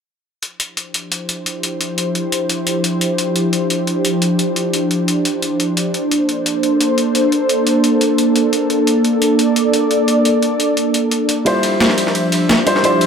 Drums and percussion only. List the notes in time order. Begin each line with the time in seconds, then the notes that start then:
0.43 closed hi-hat
0.60 closed hi-hat
0.77 closed hi-hat
0.94 closed hi-hat
1.12 closed hi-hat
1.29 closed hi-hat
1.46 closed hi-hat
1.63 closed hi-hat
1.81 closed hi-hat
1.98 closed hi-hat
2.15 closed hi-hat
2.32 closed hi-hat
2.50 closed hi-hat
2.67 closed hi-hat
2.84 closed hi-hat
3.01 closed hi-hat
3.18 closed hi-hat
3.36 closed hi-hat
3.53 closed hi-hat
3.70 closed hi-hat
3.87 closed hi-hat
4.05 closed hi-hat
4.22 closed hi-hat
4.39 closed hi-hat
4.56 closed hi-hat
4.74 closed hi-hat
4.91 closed hi-hat
5.08 closed hi-hat
5.25 closed hi-hat
5.42 closed hi-hat
5.60 closed hi-hat
5.77 closed hi-hat
5.94 closed hi-hat
6.11 closed hi-hat
6.29 closed hi-hat
6.46 closed hi-hat
6.63 closed hi-hat
6.81 closed hi-hat
6.98 closed hi-hat
7.15 closed hi-hat
7.32 closed hi-hat
7.49 closed hi-hat
7.67 closed hi-hat
7.84 closed hi-hat
8.01 closed hi-hat
8.18 closed hi-hat
8.36 closed hi-hat
8.53 closed hi-hat
8.70 closed hi-hat
8.87 closed hi-hat
9.04 closed hi-hat
9.22 closed hi-hat
9.39 closed hi-hat
9.56 closed hi-hat
9.73 closed hi-hat
9.91 closed hi-hat
10.08 closed hi-hat
10.25 closed hi-hat
10.42 closed hi-hat
10.60 closed hi-hat
10.77 closed hi-hat
10.94 closed hi-hat
11.11 closed hi-hat
11.29 closed hi-hat
11.46 closed hi-hat, ride
11.63 closed hi-hat, ride
11.80 snare, closed hi-hat, ride
11.90 snare
11.98 closed hi-hat, ride
12.07 snare
12.15 closed hi-hat, ride
12.32 closed hi-hat, ride
12.49 snare, closed hi-hat, ride
12.67 closed hi-hat, ride
12.76 snare
12.84 closed hi-hat, ride
13.01 closed hi-hat, ride